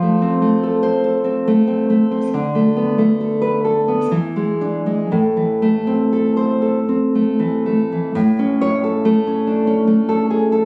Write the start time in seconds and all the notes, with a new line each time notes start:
Already playing: F3
0.02 A3
0.22 C4
0.42 A3
0.63 A4
0.83 C5
1.04 A4
1.24 C4
1.48 A3
1.67 C4
1.90 A3
2.11 C4
2.34 D3
2.55 A3
2.76 B3
2.98 A3
3.21 A4
3.42 B4
3.64 A4
3.88 B3
4.11 E3
4.36 G#3
4.61 D4
4.86 G#3
5.12 A2
5.37 E3
5.62 A3
5.87 C4
6.13 A4
6.37 C5
6.62 A4
6.89 C4
7.15 A3
7.39 E3
7.66 A3
7.92 E3
8.15 A2
8.39 C#4
8.61 C#5
8.83 A4
9.05 A3
9.27 C#4
9.47 D4
9.67 C#4
9.87 A3
10.09 A4
10.30 G#4
10.52 A4